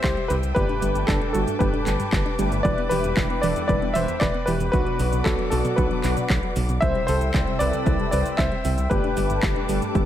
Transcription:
Already playing: C5 E5 G5 E6
0.02 C2 C3 G4 C5, kick, clap, closed hi-hat, cabasa
0.17 G3, closed hi-hat
0.28 C2 C3 G4 B4, closed hi-hat, cabasa
0.43 C2, closed hi-hat, cabasa
0.55 G1 G2 G3 A3 D4 G4 B4 A5 D6, kick, closed hi-hat, cabasa
0.69 D4, closed hi-hat
0.82 G1 G3, closed hi-hat, cabasa
0.95 G2, closed hi-hat, cabasa
1.07 G1 G3 D4 A4, kick, clap, closed hi-hat, cabasa
1.21 D4, closed hi-hat
1.33 G1 G2 G3 A3 D4 F#4 G4 A4, closed hi-hat, cabasa
1.47 G2, closed hi-hat, cabasa
1.59 G1 G3 G4 B4, kick, closed hi-hat, cabasa
1.73 D4, closed hi-hat
1.86 G1 G3, clap, closed hi-hat, cabasa
1.99 G2, closed hi-hat, cabasa
2.12 G1 G3, kick, clap, closed hi-hat, cabasa
2.25 D4, closed hi-hat
2.38 G1 G3 A3 D4 G4 B4, closed hi-hat, cabasa
2.52 G2, closed hi-hat, cabasa
2.63 E1 E3 G3 D4 E4 B4 D5 E5 G5, kick, closed hi-hat, cabasa
2.78 B3, closed hi-hat
2.89 E1 E3 G4 B4, open hi-hat, cabasa
3.04 E2, closed hi-hat, cabasa
3.17 E1 E3, kick, clap, closed hi-hat, cabasa
3.30 B3, closed hi-hat
3.42 E1 E3 G3 D4 E4 A4 B4 D5, open hi-hat, cabasa
3.56 E2, closed hi-hat, cabasa
3.68 E1 E3 B4 D5, kick, closed hi-hat, cabasa
3.82 B3, closed hi-hat
3.94 E1 E3 G3 D4 E4 B4 C5 E5, open hi-hat, cabasa
4.08 E2, closed hi-hat, cabasa
4.20 E1 E3 B4 D5, kick, clap, closed hi-hat, cabasa
4.34 B3, closed hi-hat
4.46 E1 E3 G4 B4, open hi-hat, cabasa
4.60 E2, closed hi-hat, cabasa
4.72 B1 B2 F#3 B3 D4 F#4 B4 D5 F#5 D6, kick, closed hi-hat, cabasa
4.87 F#3, closed hi-hat
4.99 B1 B2, open hi-hat, cabasa
5.12 B2, closed hi-hat, cabasa
5.24 B1 B2 F#4 A4, kick, clap, closed hi-hat, cabasa
5.39 F#3, closed hi-hat
5.50 B1 B2 F#3 B3 D4 F#4 A4, open hi-hat, cabasa
5.65 B2, closed hi-hat, cabasa
5.76 B1 B2 F#4 B4, kick, closed hi-hat, cabasa
5.91 F#3, closed hi-hat
6.04 B1 B2 F#3 B3 D4 B4, clap, open hi-hat, cabasa
6.17 B2, closed hi-hat, cabasa
6.30 B1 B2, kick, clap, closed hi-hat, cabasa
6.43 F#3, closed hi-hat
6.56 B1 B2, open hi-hat, cabasa
6.69 B2, closed hi-hat, cabasa
6.80 C2 C3 G3 C4 E4 C5 E5 G5 E6, kick, closed hi-hat, cabasa
6.95 G3, closed hi-hat
7.07 C2 C3 A4 C5, open hi-hat, cabasa
7.21 C2, closed hi-hat, cabasa
7.34 C2 C3, kick, clap, closed hi-hat, cabasa
7.47 G3, closed hi-hat
7.59 C2 C3 G3 C4 E4 A4 B4 D5, open hi-hat, cabasa
7.73 C2, closed hi-hat, cabasa
7.86 C2 C3, kick, closed hi-hat, cabasa
7.99 G3, closed hi-hat
8.11 C2 C3 G3 C4 E4 B4 C5 D5, open hi-hat, cabasa
8.26 C2, closed hi-hat, cabasa
8.37 C2 C3 C5 E5, kick, clap, closed hi-hat, cabasa
8.52 G3, closed hi-hat
8.65 C2 C3, open hi-hat, cabasa
8.78 C2, closed hi-hat, cabasa
8.90 G1 G2 G3 A3 D4 G4 B4 A5 D6, kick, closed hi-hat, cabasa
9.04 D4, closed hi-hat
9.17 G1 G3, open hi-hat, cabasa
9.30 G2, closed hi-hat, cabasa
9.43 G1 G3, kick, clap, closed hi-hat, cabasa
9.56 D4, closed hi-hat
9.69 G1 G2 G3 A3 D4 G4 A4, open hi-hat, cabasa
9.82 G2, closed hi-hat, cabasa
9.95 G1 G3, kick, closed hi-hat, cabasa

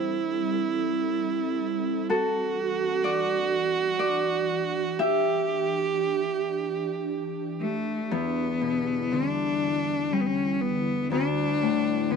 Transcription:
Already playing: G3 C4 E4 G4 A4 C5
2.09 E3 D4 F#4 A4
3.04 D5
3.99 D5
4.98 G4 E5
7.60 A3
8.11 E2 D3 G3 B3 E4
8.61 B2
9.11 D3 D4
10.13 G3 C#4
10.21 B3
10.26 C#4
10.61 B3
11.11 D2 A3 D4
11.62 A2
12.10 D3 B3

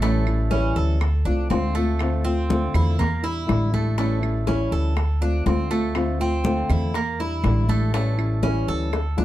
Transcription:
Already playing: A1
0.02 E3 G3 A3 C#4 E4, high bongo, high conga
0.27 G3 C#4 E4, high conga, claves
0.51 E3 G3 C#4 E4, high bongo, high conga
0.76 D2 A4, high bongo
1.01 muted nylon-string guitar stroke, high bongo, high conga, claves
1.25 C2 A3 C4 D4 F4, high bongo, high conga
1.50 D2 D3 A3 C4 F4, high bongo, low bongo, high conga
1.75 A3 C4 F4, high bongo
1.99 D3 A3 C4 F4, high bongo, high conga, claves
2.24 A3 C4 F4, high conga
2.49 D3 A3 C4 F4, high bongo, high conga
2.74 E2 E4, high bongo, high conga, low conga, claves
2.98 A#3, muted nylon-string guitar stroke, high bongo, high conga, low conga
3.22 G3 D4 E4, high bongo, high conga
3.46 A1 D3 G3 D4 E4, high bongo, low bongo, high conga, claves
3.72 G3 A3 D4 E4, high bongo, high conga
3.97 E3 G3 A3 C#4 E4, high bongo
4.22 G3 C#4 E4, high conga, claves
4.47 E3 G3 C#4 E4, high bongo, high conga
4.72 D2 A4, high bongo
4.96 muted nylon-string guitar stroke, high bongo, high conga, claves
5.21 A3 C4 D4 F4, high bongo, high conga
5.46 D2 D3 A3 C4 F4, high bongo, low bongo, high conga
5.70 A3 C4 F4, high bongo
5.95 D3 A3 C4 F4, high bongo, high conga, claves
6.20 A3 C4 F4, high conga
6.44 D3 A3 C4 F4, high bongo, high conga
6.69 E2 E4, high bongo, high conga, low conga, claves
6.94 A#3, muted nylon-string guitar stroke, high bongo, high conga
7.19 G3 D4 E4, high bongo, high conga
7.44 A1 D3 G3 D4 E4, high bongo, low bongo, high conga, claves
7.69 G3 A3 D4 E4, high bongo, high conga
7.93 E3 G3 A3 C#4 E4, high bongo
8.17 G3 C#4 E4, high conga, claves
8.42 E3 G3 C#4 E4, high bongo, high conga
8.68 D2 A4, high bongo
8.93 muted nylon-string guitar stroke, high bongo, high conga, claves
9.17 C2 A3 C4 D4 F4, high bongo, high conga

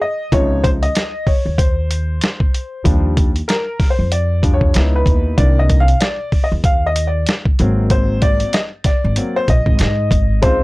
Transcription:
0.01 D#5
0.32 C#2 C3 F3 D#4 C#5, kick, closed hi-hat
0.64 C5, kick, closed hi-hat
0.83 D#5, closed hi-hat
0.95 snare, closed hi-hat
1.27 C#5, kick, open hi-hat
1.46 D#2
1.58 C5, kick, closed hi-hat
1.91 closed hi-hat
2.21 snare, closed hi-hat
2.40 kick
2.54 closed hi-hat
2.84 D#2 F3 G3 D4, kick, closed hi-hat
3.17 kick, closed hi-hat
3.36 closed hi-hat
3.48 A#4, snare, closed hi-hat
3.80 kick, snare, open hi-hat
3.90 C5
3.99 F2
4.12 D5, closed hi-hat
4.43 F3 G3 D4, kick, closed hi-hat
4.54 C#5
4.61 kick
4.74 C#2 B3 D#4 E4, snare, closed hi-hat
4.96 B4
5.06 D#2, kick, closed hi-hat
5.37 C2 D#3 A#3 D4 D5, kick, closed hi-hat
5.59 D#5
5.70 kick, closed hi-hat
5.80 F5
5.88 closed hi-hat
6.01 D5, snare, closed hi-hat
6.32 kick, open hi-hat
6.44 D#5
6.52 D#2
6.64 F5, kick, closed hi-hat
6.86 D#5
6.96 closed hi-hat
7.07 D5
7.27 snare, closed hi-hat
7.45 kick
7.59 G#1 F#3 A#3 C4, closed hi-hat
7.90 C5, kick, closed hi-hat
8.22 D5, kick, closed hi-hat
8.40 closed hi-hat
8.53 D#5, snare, closed hi-hat
8.84 D5, kick, snare, closed hi-hat
9.04 G#1
9.16 F#3 A#3 C4, closed hi-hat
9.36 C5
9.48 A#1 D#5, kick, closed hi-hat
9.66 G#1, kick
9.79 G#2, snare, closed hi-hat
10.11 G#1, kick, closed hi-hat
10.42 C#2 G#3 C4 D#4 F4 C5, kick, closed hi-hat

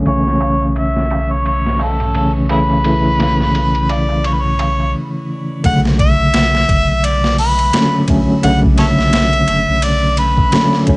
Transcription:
0.05 B1 C#3 E3 A3 C#4 C#5, ride, darbuka tek
0.27 snare
0.40 ride, darbuka tek
0.61 darbuka tek
0.75 E5, ride, darbuka tek
0.96 snare
1.10 ride, darbuka tek
1.30 C#5, darbuka tek
1.45 C#5, ride, darbuka tek
1.65 snare, darbuka dum
1.79 A4, open hi-hat, darbuka tek
2.00 ride, darbuka tek, darbuka dum
2.14 C#3 E3 A3 C#4 A4, ride, darbuka tek
2.49 C#3 E3 A3 C#4 E4 G#4 B4, ride, darbuka tek
2.70 darbuka tek
2.84 C#3 E3 A3 E4, ride, darbuka tek
3.20 snare, ride, darbuka tek
3.40 snare, darbuka tek, darbuka dum
3.55 ride, darbuka tek
3.75 ride
3.89 D5, ride, darbuka tek
4.09 darbuka tek
4.24 C#5, ride, darbuka tek
4.33 B4
4.42 C#5, darbuka dum
4.59 ride, darbuka tek
4.80 darbuka tek
5.64 B1 C#3 D3 F#3 A3 F#5, kick, ride
5.85 snare
5.99 E5, kick, ride
6.19 B1
6.34 B1, snare, ride
6.55 snare
6.69 F#1, kick, ride
6.89 B1
7.04 D5, ride
7.24 snare
7.38 B4, open hi-hat
7.59 ride
7.73 D3 F#3 A3 C#4, snare, ride
8.08 B1 D3 F#3 A3 C#4, kick, ride
8.42 B1 C#3 D3 F#3 A3 F#5, ride
8.63 kick
8.78 A4 C#5 E5, snare, ride
8.98 B1, snare
9.13 B1, snare, ride
9.33 ride
9.48 F#1, ride
9.68 B1
9.82 D5, ride
10.17 B4, ride
10.38 kick
10.52 D3 F#3 A3 C#4, snare, ride
10.73 snare
10.87 B1 D3 F#3 A3 C#4, kick, ride

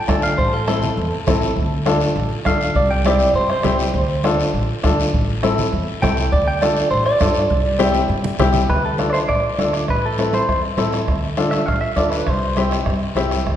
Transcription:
0.07 D2 D4 F4 A4 A5, bombo low, bombo rim, high conga, short guiro
0.22 F5, short guiro
0.37 A1 C5, bombo low, high conga, long guiro
0.53 A4
0.67 C4 E4 A4, bombo rim, high conga, short guiro
0.82 low conga, short guiro
0.97 E2, high conga, long guiro
1.27 A1 C4 E4 A4, bombo low, bombo rim, high conga, low conga, short guiro
1.41 short guiro
1.56 D2, bombo low, high conga, long guiro
1.86 D4 F4 A4, bombo rim, high conga, short guiro
2.00 short guiro
2.16 A1, high conga, long guiro
2.45 D2 D4 F4 A4 F5, bombo low, bombo rim, high conga, short guiro
2.61 short guiro
2.75 C2 D5, bombo low, high conga, long guiro
2.91 G5
3.05 C4 E4 G4 D5, bombo rim, high conga, short guiro
3.19 short guiro
3.34 G2 C5, high conga, long guiro
3.50 C5, bombo rim
3.63 C2 C4 E4 G4, bombo low, bombo rim, high conga, low conga, short guiro
3.79 short guiro
3.94 D2, bombo low, high conga, long guiro
4.24 D4 F4 A4, bombo rim, high conga, short guiro
4.40 short guiro
4.54 A1, high conga, long guiro
4.83 D2 D4 F4 A4, bombo low, bombo rim, high conga, short guiro
5.00 short guiro
5.14 A1, bombo low, high conga, long guiro
5.43 C4 E4 A4, bombo rim, high conga, short guiro
5.58 low conga, short guiro
5.73 E2, high conga, long guiro
6.02 C2 C4 E4 A4 G5, bombo low, bombo rim, high conga, low conga, short guiro
6.17 short guiro
6.32 D2 D5, bombo low, high conga, long guiro
6.48 G5
6.62 D4 F4 A4 D5, bombo rim, high conga, short guiro
6.76 short guiro
6.90 A1 C5, high conga, long guiro
7.05 D5, bombo rim
7.20 G2 D4 F4 A4, bombo low, bombo rim, high conga, short guiro
7.34 short guiro
7.50 C2, bombo low, high conga, long guiro
7.79 C4 E4 G4, bombo rim, high conga, short guiro
7.94 high conga, short guiro
8.08 G2, long guiro
8.24 low conga
8.39 C2 C4 E4 G4, bombo low, bombo rim, low conga, short guiro
8.53 low conga, short guiro
8.68 D2 B4, bombo low, bombo rim, long guiro
8.85 A4
8.98 D4 F4 A4, bombo rim, high conga, short guiro
9.10 C5 D5
9.14 bombo rim, short guiro
9.29 A1 D5, bombo low, bombo rim, long guiro
9.58 D2 D4 F4 A4, bombo rim, high conga, short guiro
9.73 bombo rim, short guiro
9.88 A1 B4, bombo low, bombo rim, long guiro
10.05 A4
10.18 C4 E4 A4, bombo rim, high conga, short guiro
10.33 C5, bombo rim, high conga, short guiro
10.49 E2, bombo low, bombo rim, long guiro
10.77 A1 C4 E4 A4, bombo rim, high conga, short guiro
10.92 bombo rim, short guiro
11.08 D2, bombo low, bombo rim, long guiro
11.37 D4 F4 A4, bombo rim, high conga, short guiro
11.51 E5, bombo rim, high conga, short guiro
11.66 A1 F5, bombo low, bombo rim, long guiro
11.81 E5
11.96 D2 D4 F4 A4 D5, bombo rim, high conga, short guiro
12.10 B4, bombo rim, short guiro
12.27 C2 C5, bombo low, bombo rim, long guiro
12.56 C4 E4 G4, bombo rim, high conga, short guiro
12.71 bombo rim, short guiro
12.86 G2, bombo low, bombo rim, long guiro
13.15 C2 C4 E4 G4, bombo rim, high conga, short guiro
13.31 bombo rim, short guiro
13.46 D2, bombo low, bombo rim, long guiro

